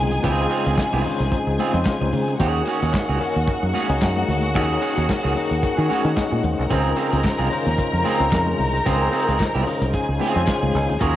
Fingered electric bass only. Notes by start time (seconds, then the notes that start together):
Already playing: C2
0.24 C#2
0.66 C#2
0.93 C2
1.20 C2
1.47 C#2
1.74 F2
2.01 C#2
2.13 C#3
2.40 D#2
2.82 D#2
3.09 C#2
3.36 D#2
3.63 F#2
3.89 C#2
4.02 F#2
4.28 D2
4.55 D#2
4.98 D#2
5.25 C#2
5.51 D#2
5.78 D#3
6.05 D#3
6.32 A#2
6.44 D#2
6.59 C2
6.71 C#2
7.13 C#2
7.39 C2
7.67 D#2
7.93 F2
8.20 C#2
8.33 F2
8.59 C2
8.86 C#2
9.28 C#2
9.55 C2
9.81 C2
10.09 C#2
10.36 F2
10.63 C#2
10.75 C#2
10.90 D2
11.01 D#2